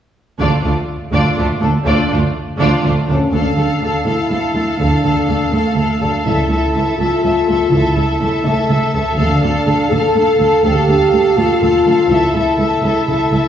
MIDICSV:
0, 0, Header, 1, 6, 480
1, 0, Start_track
1, 0, Key_signature, -1, "minor"
1, 0, Tempo, 487409
1, 392, Time_signature, 6, 3, 24, 8
1, 13275, End_track
2, 0, Start_track
2, 0, Title_t, "Viola section"
2, 0, Program_c, 0, 48
2, 388, Note_on_c, 0, 62, 30
2, 389, Note_on_c, 0, 57, 34
2, 614, Note_off_c, 0, 57, 0
2, 614, Note_off_c, 0, 62, 0
2, 628, Note_on_c, 0, 57, 26
2, 629, Note_on_c, 0, 62, 25
2, 706, Note_off_c, 0, 57, 0
2, 708, Note_off_c, 0, 62, 0
2, 1107, Note_on_c, 0, 57, 36
2, 1107, Note_on_c, 0, 62, 34
2, 1334, Note_off_c, 0, 62, 0
2, 1335, Note_off_c, 0, 57, 0
2, 1351, Note_on_c, 0, 57, 29
2, 1355, Note_on_c, 0, 62, 31
2, 1430, Note_off_c, 0, 57, 0
2, 1434, Note_off_c, 0, 62, 0
2, 1584, Note_on_c, 0, 62, 32
2, 1585, Note_on_c, 0, 57, 36
2, 1663, Note_off_c, 0, 62, 0
2, 1664, Note_off_c, 0, 57, 0
2, 1827, Note_on_c, 0, 62, 43
2, 1830, Note_on_c, 0, 57, 44
2, 2049, Note_off_c, 0, 62, 0
2, 2054, Note_off_c, 0, 57, 0
2, 2061, Note_on_c, 0, 62, 30
2, 2066, Note_on_c, 0, 57, 29
2, 2140, Note_off_c, 0, 62, 0
2, 2144, Note_off_c, 0, 57, 0
2, 2545, Note_on_c, 0, 62, 48
2, 2546, Note_on_c, 0, 57, 46
2, 2775, Note_off_c, 0, 62, 0
2, 2776, Note_off_c, 0, 57, 0
2, 2787, Note_on_c, 0, 62, 35
2, 2790, Note_on_c, 0, 57, 37
2, 2866, Note_off_c, 0, 62, 0
2, 2869, Note_off_c, 0, 57, 0
2, 3041, Note_on_c, 0, 57, 30
2, 3041, Note_on_c, 0, 62, 31
2, 3120, Note_off_c, 0, 57, 0
2, 3120, Note_off_c, 0, 62, 0
2, 3279, Note_on_c, 0, 69, 33
2, 3281, Note_off_c, 0, 69, 0
2, 3281, Note_on_c, 0, 69, 33
2, 3510, Note_off_c, 0, 69, 0
2, 3522, Note_on_c, 0, 69, 29
2, 3525, Note_off_c, 0, 69, 0
2, 3525, Note_on_c, 0, 69, 29
2, 3756, Note_off_c, 0, 69, 0
2, 3767, Note_on_c, 0, 69, 29
2, 3769, Note_off_c, 0, 69, 0
2, 3769, Note_on_c, 0, 69, 29
2, 3987, Note_off_c, 0, 69, 0
2, 3999, Note_on_c, 0, 69, 29
2, 4000, Note_off_c, 0, 69, 0
2, 4000, Note_on_c, 0, 69, 29
2, 4224, Note_off_c, 0, 69, 0
2, 4235, Note_on_c, 0, 69, 28
2, 4236, Note_off_c, 0, 69, 0
2, 4236, Note_on_c, 0, 69, 31
2, 4471, Note_off_c, 0, 69, 0
2, 4483, Note_on_c, 0, 69, 29
2, 4485, Note_off_c, 0, 69, 0
2, 4485, Note_on_c, 0, 69, 29
2, 4713, Note_off_c, 0, 69, 0
2, 4725, Note_on_c, 0, 69, 32
2, 4729, Note_off_c, 0, 69, 0
2, 4729, Note_on_c, 0, 69, 35
2, 4955, Note_off_c, 0, 69, 0
2, 4966, Note_on_c, 0, 69, 30
2, 4969, Note_off_c, 0, 69, 0
2, 4969, Note_on_c, 0, 69, 30
2, 5191, Note_off_c, 0, 69, 0
2, 5203, Note_on_c, 0, 69, 30
2, 5206, Note_off_c, 0, 69, 0
2, 5206, Note_on_c, 0, 69, 27
2, 5436, Note_off_c, 0, 69, 0
2, 5448, Note_on_c, 0, 69, 29
2, 5449, Note_off_c, 0, 69, 0
2, 5449, Note_on_c, 0, 69, 31
2, 5671, Note_off_c, 0, 69, 0
2, 5683, Note_on_c, 0, 69, 29
2, 5684, Note_off_c, 0, 69, 0
2, 5684, Note_on_c, 0, 69, 31
2, 5909, Note_off_c, 0, 69, 0
2, 5921, Note_on_c, 0, 69, 30
2, 6153, Note_off_c, 0, 69, 0
2, 6164, Note_on_c, 0, 69, 35
2, 6167, Note_off_c, 0, 69, 0
2, 6167, Note_on_c, 0, 69, 33
2, 6390, Note_off_c, 0, 69, 0
2, 6401, Note_on_c, 0, 69, 31
2, 6404, Note_off_c, 0, 69, 0
2, 6404, Note_on_c, 0, 69, 31
2, 6628, Note_off_c, 0, 69, 0
2, 6640, Note_on_c, 0, 69, 29
2, 6645, Note_off_c, 0, 69, 0
2, 6645, Note_on_c, 0, 69, 30
2, 6868, Note_off_c, 0, 69, 0
2, 6880, Note_on_c, 0, 69, 31
2, 7108, Note_off_c, 0, 69, 0
2, 7119, Note_on_c, 0, 69, 33
2, 7124, Note_off_c, 0, 69, 0
2, 7124, Note_on_c, 0, 69, 33
2, 7348, Note_off_c, 0, 69, 0
2, 7360, Note_on_c, 0, 69, 31
2, 7363, Note_off_c, 0, 69, 0
2, 7363, Note_on_c, 0, 69, 33
2, 7594, Note_off_c, 0, 69, 0
2, 7606, Note_on_c, 0, 69, 36
2, 7607, Note_off_c, 0, 69, 0
2, 7607, Note_on_c, 0, 69, 39
2, 7828, Note_off_c, 0, 69, 0
2, 7840, Note_on_c, 0, 69, 33
2, 7841, Note_off_c, 0, 69, 0
2, 7841, Note_on_c, 0, 69, 34
2, 8065, Note_off_c, 0, 69, 0
2, 8077, Note_on_c, 0, 69, 33
2, 8079, Note_off_c, 0, 69, 0
2, 8079, Note_on_c, 0, 69, 33
2, 8313, Note_off_c, 0, 69, 0
2, 8325, Note_on_c, 0, 69, 36
2, 8546, Note_off_c, 0, 69, 0
2, 8558, Note_on_c, 0, 69, 37
2, 8563, Note_off_c, 0, 69, 0
2, 8563, Note_on_c, 0, 69, 37
2, 8788, Note_off_c, 0, 69, 0
2, 8800, Note_on_c, 0, 69, 35
2, 8801, Note_off_c, 0, 69, 0
2, 8801, Note_on_c, 0, 69, 36
2, 9024, Note_off_c, 0, 69, 0
2, 9036, Note_on_c, 0, 69, 41
2, 9037, Note_off_c, 0, 69, 0
2, 9037, Note_on_c, 0, 69, 41
2, 9262, Note_off_c, 0, 69, 0
2, 9274, Note_on_c, 0, 69, 37
2, 9275, Note_off_c, 0, 69, 0
2, 9275, Note_on_c, 0, 69, 37
2, 9503, Note_off_c, 0, 69, 0
2, 9515, Note_on_c, 0, 69, 39
2, 9745, Note_off_c, 0, 69, 0
2, 9757, Note_on_c, 0, 69, 39
2, 9758, Note_off_c, 0, 69, 0
2, 9758, Note_on_c, 0, 69, 40
2, 9982, Note_off_c, 0, 69, 0
2, 9994, Note_on_c, 0, 69, 38
2, 9997, Note_off_c, 0, 69, 0
2, 9997, Note_on_c, 0, 69, 37
2, 10222, Note_off_c, 0, 69, 0
2, 10234, Note_on_c, 0, 69, 36
2, 10237, Note_off_c, 0, 69, 0
2, 10237, Note_on_c, 0, 69, 39
2, 10471, Note_off_c, 0, 69, 0
2, 10483, Note_on_c, 0, 69, 44
2, 10485, Note_off_c, 0, 69, 0
2, 10485, Note_on_c, 0, 69, 45
2, 10706, Note_off_c, 0, 69, 0
2, 10717, Note_on_c, 0, 69, 40
2, 10718, Note_off_c, 0, 69, 0
2, 10718, Note_on_c, 0, 69, 39
2, 10951, Note_off_c, 0, 69, 0
2, 10962, Note_on_c, 0, 69, 36
2, 10963, Note_off_c, 0, 69, 0
2, 10963, Note_on_c, 0, 69, 38
2, 11187, Note_off_c, 0, 69, 0
2, 11198, Note_on_c, 0, 69, 37
2, 11203, Note_off_c, 0, 69, 0
2, 11203, Note_on_c, 0, 69, 39
2, 11421, Note_off_c, 0, 69, 0
2, 11432, Note_on_c, 0, 69, 40
2, 11435, Note_off_c, 0, 69, 0
2, 11435, Note_on_c, 0, 69, 38
2, 11653, Note_off_c, 0, 69, 0
2, 11665, Note_on_c, 0, 69, 39
2, 11668, Note_off_c, 0, 69, 0
2, 11668, Note_on_c, 0, 69, 39
2, 11905, Note_off_c, 0, 69, 0
2, 11917, Note_on_c, 0, 69, 41
2, 11920, Note_off_c, 0, 69, 0
2, 11920, Note_on_c, 0, 69, 42
2, 12143, Note_off_c, 0, 69, 0
2, 12155, Note_on_c, 0, 69, 36
2, 12158, Note_off_c, 0, 69, 0
2, 12158, Note_on_c, 0, 69, 37
2, 12378, Note_off_c, 0, 69, 0
2, 12390, Note_on_c, 0, 69, 35
2, 12392, Note_off_c, 0, 69, 0
2, 12392, Note_on_c, 0, 69, 34
2, 12627, Note_off_c, 0, 69, 0
2, 12639, Note_on_c, 0, 69, 34
2, 12860, Note_off_c, 0, 69, 0
2, 12872, Note_on_c, 0, 69, 33
2, 12878, Note_off_c, 0, 69, 0
2, 12878, Note_on_c, 0, 69, 33
2, 13095, Note_off_c, 0, 69, 0
2, 13107, Note_on_c, 0, 69, 29
2, 13111, Note_off_c, 0, 69, 0
2, 13111, Note_on_c, 0, 69, 30
2, 13275, Note_off_c, 0, 69, 0
2, 13275, End_track
3, 0, Start_track
3, 0, Title_t, "Violin section"
3, 0, Program_c, 1, 48
3, 395, Note_on_c, 1, 65, 30
3, 400, Note_on_c, 1, 74, 31
3, 618, Note_off_c, 1, 65, 0
3, 620, Note_off_c, 1, 74, 0
3, 631, Note_on_c, 1, 65, 25
3, 636, Note_on_c, 1, 57, 23
3, 710, Note_off_c, 1, 65, 0
3, 715, Note_off_c, 1, 57, 0
3, 1116, Note_on_c, 1, 65, 35
3, 1117, Note_on_c, 1, 74, 42
3, 1339, Note_off_c, 1, 65, 0
3, 1340, Note_off_c, 1, 74, 0
3, 1357, Note_on_c, 1, 65, 33
3, 1359, Note_on_c, 1, 57, 30
3, 1436, Note_off_c, 1, 65, 0
3, 1438, Note_off_c, 1, 57, 0
3, 1605, Note_on_c, 1, 69, 33
3, 1608, Note_on_c, 1, 62, 34
3, 1684, Note_off_c, 1, 69, 0
3, 1687, Note_off_c, 1, 62, 0
3, 1835, Note_on_c, 1, 65, 43
3, 1837, Note_on_c, 1, 74, 43
3, 2059, Note_off_c, 1, 65, 0
3, 2061, Note_off_c, 1, 74, 0
3, 2083, Note_on_c, 1, 65, 32
3, 2086, Note_on_c, 1, 57, 30
3, 2162, Note_off_c, 1, 65, 0
3, 2165, Note_off_c, 1, 57, 0
3, 2555, Note_on_c, 1, 65, 49
3, 2560, Note_on_c, 1, 74, 42
3, 2781, Note_off_c, 1, 65, 0
3, 2783, Note_off_c, 1, 74, 0
3, 2803, Note_on_c, 1, 65, 37
3, 2807, Note_on_c, 1, 57, 39
3, 2882, Note_off_c, 1, 65, 0
3, 2886, Note_off_c, 1, 57, 0
3, 3056, Note_on_c, 1, 69, 35
3, 3058, Note_on_c, 1, 62, 32
3, 3135, Note_off_c, 1, 69, 0
3, 3137, Note_off_c, 1, 62, 0
3, 3281, Note_on_c, 1, 77, 33
3, 3286, Note_on_c, 1, 69, 32
3, 3508, Note_off_c, 1, 69, 0
3, 3509, Note_off_c, 1, 77, 0
3, 3520, Note_on_c, 1, 69, 29
3, 3521, Note_on_c, 1, 77, 29
3, 3753, Note_off_c, 1, 69, 0
3, 3757, Note_off_c, 1, 77, 0
3, 3765, Note_on_c, 1, 69, 29
3, 3767, Note_on_c, 1, 77, 28
3, 3999, Note_off_c, 1, 69, 0
3, 4000, Note_off_c, 1, 77, 0
3, 4011, Note_on_c, 1, 77, 30
3, 4013, Note_on_c, 1, 69, 31
3, 4230, Note_off_c, 1, 69, 0
3, 4231, Note_off_c, 1, 77, 0
3, 4242, Note_on_c, 1, 69, 29
3, 4243, Note_on_c, 1, 77, 30
3, 4477, Note_off_c, 1, 69, 0
3, 4478, Note_off_c, 1, 77, 0
3, 4490, Note_on_c, 1, 69, 26
3, 4490, Note_on_c, 1, 77, 28
3, 4709, Note_off_c, 1, 69, 0
3, 4709, Note_off_c, 1, 77, 0
3, 4721, Note_on_c, 1, 69, 34
3, 4721, Note_on_c, 1, 77, 33
3, 4947, Note_off_c, 1, 77, 0
3, 4951, Note_off_c, 1, 69, 0
3, 4959, Note_on_c, 1, 77, 29
3, 4963, Note_on_c, 1, 69, 31
3, 5185, Note_off_c, 1, 77, 0
3, 5187, Note_off_c, 1, 69, 0
3, 5197, Note_on_c, 1, 77, 30
3, 5199, Note_on_c, 1, 69, 29
3, 5427, Note_off_c, 1, 77, 0
3, 5428, Note_off_c, 1, 69, 0
3, 5439, Note_on_c, 1, 77, 32
3, 5440, Note_on_c, 1, 69, 32
3, 5675, Note_off_c, 1, 77, 0
3, 5677, Note_off_c, 1, 69, 0
3, 5686, Note_on_c, 1, 77, 29
3, 5688, Note_on_c, 1, 69, 29
3, 5907, Note_off_c, 1, 69, 0
3, 5910, Note_off_c, 1, 77, 0
3, 5919, Note_on_c, 1, 69, 29
3, 5922, Note_on_c, 1, 77, 30
3, 6148, Note_off_c, 1, 69, 0
3, 6158, Note_off_c, 1, 77, 0
3, 6159, Note_on_c, 1, 69, 33
3, 6164, Note_on_c, 1, 76, 34
3, 6397, Note_off_c, 1, 69, 0
3, 6399, Note_off_c, 1, 76, 0
3, 6413, Note_on_c, 1, 69, 32
3, 6416, Note_on_c, 1, 76, 30
3, 6633, Note_off_c, 1, 69, 0
3, 6635, Note_off_c, 1, 76, 0
3, 6645, Note_on_c, 1, 69, 31
3, 6647, Note_on_c, 1, 76, 30
3, 6880, Note_off_c, 1, 69, 0
3, 6881, Note_off_c, 1, 76, 0
3, 6892, Note_on_c, 1, 76, 34
3, 6893, Note_on_c, 1, 69, 33
3, 7106, Note_off_c, 1, 76, 0
3, 7108, Note_off_c, 1, 69, 0
3, 7117, Note_on_c, 1, 76, 30
3, 7120, Note_on_c, 1, 69, 29
3, 7356, Note_off_c, 1, 76, 0
3, 7357, Note_off_c, 1, 69, 0
3, 7368, Note_on_c, 1, 76, 30
3, 7372, Note_on_c, 1, 69, 31
3, 7595, Note_off_c, 1, 69, 0
3, 7595, Note_off_c, 1, 76, 0
3, 7607, Note_on_c, 1, 69, 36
3, 7607, Note_on_c, 1, 76, 37
3, 7841, Note_off_c, 1, 69, 0
3, 7841, Note_off_c, 1, 76, 0
3, 7852, Note_on_c, 1, 76, 31
3, 7855, Note_on_c, 1, 69, 31
3, 8083, Note_off_c, 1, 76, 0
3, 8085, Note_off_c, 1, 69, 0
3, 8102, Note_on_c, 1, 69, 35
3, 8102, Note_on_c, 1, 76, 33
3, 8317, Note_off_c, 1, 76, 0
3, 8320, Note_off_c, 1, 69, 0
3, 8329, Note_on_c, 1, 76, 37
3, 8332, Note_on_c, 1, 69, 36
3, 8554, Note_off_c, 1, 69, 0
3, 8556, Note_off_c, 1, 76, 0
3, 8565, Note_on_c, 1, 69, 35
3, 8568, Note_on_c, 1, 76, 33
3, 8795, Note_off_c, 1, 76, 0
3, 8799, Note_off_c, 1, 69, 0
3, 8807, Note_on_c, 1, 76, 35
3, 8810, Note_on_c, 1, 69, 34
3, 9032, Note_off_c, 1, 69, 0
3, 9040, Note_off_c, 1, 76, 0
3, 9041, Note_on_c, 1, 77, 38
3, 9044, Note_on_c, 1, 69, 41
3, 9277, Note_off_c, 1, 77, 0
3, 9279, Note_off_c, 1, 69, 0
3, 9290, Note_on_c, 1, 77, 36
3, 9292, Note_on_c, 1, 69, 36
3, 9522, Note_off_c, 1, 69, 0
3, 9522, Note_off_c, 1, 77, 0
3, 9532, Note_on_c, 1, 69, 38
3, 9534, Note_on_c, 1, 77, 35
3, 9745, Note_off_c, 1, 77, 0
3, 9754, Note_off_c, 1, 69, 0
3, 9757, Note_on_c, 1, 77, 38
3, 9765, Note_on_c, 1, 69, 39
3, 9993, Note_off_c, 1, 69, 0
3, 9994, Note_off_c, 1, 77, 0
3, 10005, Note_on_c, 1, 69, 37
3, 10006, Note_on_c, 1, 77, 36
3, 10234, Note_off_c, 1, 77, 0
3, 10238, Note_off_c, 1, 69, 0
3, 10246, Note_on_c, 1, 77, 38
3, 10249, Note_on_c, 1, 69, 37
3, 10466, Note_off_c, 1, 77, 0
3, 10470, Note_off_c, 1, 69, 0
3, 10478, Note_on_c, 1, 77, 41
3, 10482, Note_on_c, 1, 69, 44
3, 10715, Note_off_c, 1, 77, 0
3, 10716, Note_off_c, 1, 69, 0
3, 10728, Note_on_c, 1, 77, 40
3, 10732, Note_on_c, 1, 69, 40
3, 10948, Note_off_c, 1, 69, 0
3, 10950, Note_off_c, 1, 77, 0
3, 10959, Note_on_c, 1, 69, 39
3, 10962, Note_on_c, 1, 77, 37
3, 11195, Note_off_c, 1, 69, 0
3, 11196, Note_off_c, 1, 77, 0
3, 11206, Note_on_c, 1, 77, 41
3, 11213, Note_on_c, 1, 69, 41
3, 11438, Note_off_c, 1, 77, 0
3, 11441, Note_off_c, 1, 69, 0
3, 11451, Note_on_c, 1, 77, 38
3, 11454, Note_on_c, 1, 69, 37
3, 11668, Note_off_c, 1, 77, 0
3, 11670, Note_off_c, 1, 69, 0
3, 11680, Note_on_c, 1, 77, 37
3, 11681, Note_on_c, 1, 69, 38
3, 11908, Note_off_c, 1, 69, 0
3, 11914, Note_off_c, 1, 77, 0
3, 11920, Note_on_c, 1, 69, 44
3, 11923, Note_on_c, 1, 76, 40
3, 12154, Note_off_c, 1, 69, 0
3, 12156, Note_off_c, 1, 76, 0
3, 12170, Note_on_c, 1, 69, 36
3, 12171, Note_on_c, 1, 76, 35
3, 12394, Note_off_c, 1, 69, 0
3, 12394, Note_off_c, 1, 76, 0
3, 12406, Note_on_c, 1, 69, 36
3, 12406, Note_on_c, 1, 76, 35
3, 12624, Note_off_c, 1, 76, 0
3, 12630, Note_off_c, 1, 69, 0
3, 12636, Note_on_c, 1, 76, 37
3, 12641, Note_on_c, 1, 69, 37
3, 12869, Note_off_c, 1, 76, 0
3, 12872, Note_off_c, 1, 69, 0
3, 12881, Note_on_c, 1, 76, 34
3, 12884, Note_on_c, 1, 69, 33
3, 13106, Note_off_c, 1, 69, 0
3, 13114, Note_off_c, 1, 76, 0
3, 13118, Note_on_c, 1, 69, 31
3, 13125, Note_on_c, 1, 76, 31
3, 13275, Note_off_c, 1, 69, 0
3, 13275, Note_off_c, 1, 76, 0
3, 13275, End_track
4, 0, Start_track
4, 0, Title_t, "French horn section"
4, 0, Program_c, 2, 60
4, 3045, Note_on_c, 2, 61, 46
4, 3266, Note_off_c, 2, 61, 0
4, 3291, Note_on_c, 2, 62, 41
4, 4003, Note_on_c, 2, 64, 48
4, 4007, Note_off_c, 2, 62, 0
4, 4716, Note_on_c, 2, 62, 49
4, 4723, Note_off_c, 2, 64, 0
4, 5438, Note_on_c, 2, 57, 41
4, 5440, Note_off_c, 2, 62, 0
4, 5921, Note_off_c, 2, 57, 0
4, 5924, Note_on_c, 2, 62, 42
4, 6160, Note_on_c, 2, 64, 51
4, 6164, Note_off_c, 2, 62, 0
4, 6868, Note_off_c, 2, 64, 0
4, 6876, Note_on_c, 2, 65, 54
4, 7585, Note_off_c, 2, 65, 0
4, 7593, Note_on_c, 2, 64, 58
4, 8303, Note_off_c, 2, 64, 0
4, 8326, Note_on_c, 2, 57, 48
4, 8805, Note_off_c, 2, 57, 0
4, 9042, Note_on_c, 2, 62, 55
4, 9722, Note_off_c, 2, 62, 0
4, 9755, Note_on_c, 2, 69, 64
4, 10478, Note_off_c, 2, 69, 0
4, 10486, Note_on_c, 2, 67, 65
4, 11195, Note_on_c, 2, 65, 63
4, 11202, Note_off_c, 2, 67, 0
4, 11916, Note_off_c, 2, 65, 0
4, 11925, Note_on_c, 2, 64, 69
4, 13275, Note_off_c, 2, 64, 0
4, 13275, End_track
5, 0, Start_track
5, 0, Title_t, "Cello section"
5, 0, Program_c, 3, 48
5, 388, Note_on_c, 3, 38, 37
5, 467, Note_off_c, 3, 38, 0
5, 634, Note_on_c, 3, 38, 23
5, 712, Note_off_c, 3, 38, 0
5, 1120, Note_on_c, 3, 38, 38
5, 1199, Note_off_c, 3, 38, 0
5, 1359, Note_on_c, 3, 38, 30
5, 1438, Note_off_c, 3, 38, 0
5, 1593, Note_on_c, 3, 38, 33
5, 1671, Note_off_c, 3, 38, 0
5, 1838, Note_on_c, 3, 38, 44
5, 1917, Note_off_c, 3, 38, 0
5, 2080, Note_on_c, 3, 38, 34
5, 2159, Note_off_c, 3, 38, 0
5, 2557, Note_on_c, 3, 38, 52
5, 2636, Note_off_c, 3, 38, 0
5, 2795, Note_on_c, 3, 38, 32
5, 2873, Note_off_c, 3, 38, 0
5, 3038, Note_on_c, 3, 38, 31
5, 3117, Note_off_c, 3, 38, 0
5, 3275, Note_on_c, 3, 38, 35
5, 3354, Note_off_c, 3, 38, 0
5, 3522, Note_on_c, 3, 38, 31
5, 3601, Note_off_c, 3, 38, 0
5, 3762, Note_on_c, 3, 38, 31
5, 3841, Note_off_c, 3, 38, 0
5, 3997, Note_on_c, 3, 38, 36
5, 4076, Note_off_c, 3, 38, 0
5, 4241, Note_on_c, 3, 38, 33
5, 4320, Note_off_c, 3, 38, 0
5, 4479, Note_on_c, 3, 38, 32
5, 4558, Note_off_c, 3, 38, 0
5, 4720, Note_on_c, 3, 38, 35
5, 4799, Note_off_c, 3, 38, 0
5, 4965, Note_on_c, 3, 38, 33
5, 5044, Note_off_c, 3, 38, 0
5, 5202, Note_on_c, 3, 38, 31
5, 5281, Note_off_c, 3, 38, 0
5, 5443, Note_on_c, 3, 38, 35
5, 5522, Note_off_c, 3, 38, 0
5, 5676, Note_on_c, 3, 38, 35
5, 5755, Note_off_c, 3, 38, 0
5, 5928, Note_on_c, 3, 38, 33
5, 6007, Note_off_c, 3, 38, 0
5, 6165, Note_on_c, 3, 37, 38
5, 6244, Note_off_c, 3, 37, 0
5, 6406, Note_on_c, 3, 37, 34
5, 6485, Note_off_c, 3, 37, 0
5, 6652, Note_on_c, 3, 37, 34
5, 6730, Note_off_c, 3, 37, 0
5, 6888, Note_on_c, 3, 37, 37
5, 6967, Note_off_c, 3, 37, 0
5, 7128, Note_on_c, 3, 37, 35
5, 7207, Note_off_c, 3, 37, 0
5, 7368, Note_on_c, 3, 37, 36
5, 7446, Note_off_c, 3, 37, 0
5, 7603, Note_on_c, 3, 37, 41
5, 7681, Note_off_c, 3, 37, 0
5, 7842, Note_on_c, 3, 37, 35
5, 7921, Note_off_c, 3, 37, 0
5, 8085, Note_on_c, 3, 37, 37
5, 8164, Note_off_c, 3, 37, 0
5, 8324, Note_on_c, 3, 37, 41
5, 8402, Note_off_c, 3, 37, 0
5, 8563, Note_on_c, 3, 37, 38
5, 8642, Note_off_c, 3, 37, 0
5, 8800, Note_on_c, 3, 37, 39
5, 8878, Note_off_c, 3, 37, 0
5, 9047, Note_on_c, 3, 38, 45
5, 9126, Note_off_c, 3, 38, 0
5, 9282, Note_on_c, 3, 38, 40
5, 9361, Note_off_c, 3, 38, 0
5, 9523, Note_on_c, 3, 38, 38
5, 9602, Note_off_c, 3, 38, 0
5, 9763, Note_on_c, 3, 38, 44
5, 9841, Note_off_c, 3, 38, 0
5, 10000, Note_on_c, 3, 38, 41
5, 10079, Note_off_c, 3, 38, 0
5, 10242, Note_on_c, 3, 38, 43
5, 10321, Note_off_c, 3, 38, 0
5, 10480, Note_on_c, 3, 38, 50
5, 10559, Note_off_c, 3, 38, 0
5, 10720, Note_on_c, 3, 38, 44
5, 10799, Note_off_c, 3, 38, 0
5, 10962, Note_on_c, 3, 38, 40
5, 11040, Note_off_c, 3, 38, 0
5, 11200, Note_on_c, 3, 38, 46
5, 11279, Note_off_c, 3, 38, 0
5, 11441, Note_on_c, 3, 38, 42
5, 11520, Note_off_c, 3, 38, 0
5, 11685, Note_on_c, 3, 38, 43
5, 11764, Note_off_c, 3, 38, 0
5, 11924, Note_on_c, 3, 37, 49
5, 12003, Note_off_c, 3, 37, 0
5, 12159, Note_on_c, 3, 37, 39
5, 12237, Note_off_c, 3, 37, 0
5, 12396, Note_on_c, 3, 37, 38
5, 12475, Note_off_c, 3, 37, 0
5, 12637, Note_on_c, 3, 37, 43
5, 12716, Note_off_c, 3, 37, 0
5, 12885, Note_on_c, 3, 37, 36
5, 12964, Note_off_c, 3, 37, 0
5, 13119, Note_on_c, 3, 37, 36
5, 13198, Note_off_c, 3, 37, 0
5, 13275, End_track
6, 0, Start_track
6, 0, Title_t, "Double bass section"
6, 0, Program_c, 4, 48
6, 390, Note_on_c, 4, 38, 35
6, 468, Note_off_c, 4, 38, 0
6, 623, Note_on_c, 4, 38, 25
6, 702, Note_off_c, 4, 38, 0
6, 1110, Note_on_c, 4, 38, 40
6, 1188, Note_off_c, 4, 38, 0
6, 1348, Note_on_c, 4, 38, 30
6, 1427, Note_off_c, 4, 38, 0
6, 1597, Note_on_c, 4, 38, 30
6, 1675, Note_off_c, 4, 38, 0
6, 1824, Note_on_c, 4, 38, 48
6, 1903, Note_off_c, 4, 38, 0
6, 2082, Note_on_c, 4, 38, 37
6, 2161, Note_off_c, 4, 38, 0
6, 2558, Note_on_c, 4, 38, 49
6, 2637, Note_off_c, 4, 38, 0
6, 2799, Note_on_c, 4, 38, 34
6, 2878, Note_off_c, 4, 38, 0
6, 3044, Note_on_c, 4, 38, 29
6, 3123, Note_off_c, 4, 38, 0
6, 3281, Note_on_c, 4, 38, 36
6, 3504, Note_off_c, 4, 38, 0
6, 4727, Note_on_c, 4, 38, 35
6, 4948, Note_off_c, 4, 38, 0
6, 6171, Note_on_c, 4, 37, 37
6, 6391, Note_off_c, 4, 37, 0
6, 7604, Note_on_c, 4, 37, 40
6, 7827, Note_off_c, 4, 37, 0
6, 9042, Note_on_c, 4, 38, 46
6, 9266, Note_off_c, 4, 38, 0
6, 10485, Note_on_c, 4, 38, 44
6, 10706, Note_off_c, 4, 38, 0
6, 11918, Note_on_c, 4, 37, 47
6, 12141, Note_off_c, 4, 37, 0
6, 13275, End_track
0, 0, End_of_file